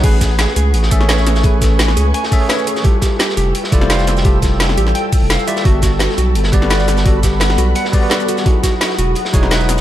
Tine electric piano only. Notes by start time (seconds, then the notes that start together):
0.02 A3 C#4 G#4 B4
0.91 A3 C#4 G#4 E5
1.00 A3 C#4 G#4 C#5
1.08 A3 C#4 G#4 C#5
1.42 A3 C#4 B4 G#5
2.31 A3 C#4 G#4 E5
2.40 A3 C#4 G#4 C#5
2.49 A3 C#4 G#4 C#5
2.83 G3 E4 F4 A4
3.71 G3 E4 F4 D5
3.80 G3 E4 F4 C5
3.89 G3 E4 F4 C5
4.23 G3 F4 A4
5.47 G3 E4 F4 D5
5.63 G3 B3 F#4 A4
6.52 G3 B3 F#4 D5
6.61 G3 B3 F#4 B4
6.70 G3 B3 F#4 B4
7.04 G3 B3 A4 F#5
7.92 G3 B3 F#4 D5
8.01 G3 B3 F#4 B4
8.10 G3 B3 F#4 B4
8.44 F#3 D#4 E4 G#4
9.32 F#3 D#4 E4 C#5
9.42 F#3 D#4 E4 B4
9.50 F#3 D#4 E4 B4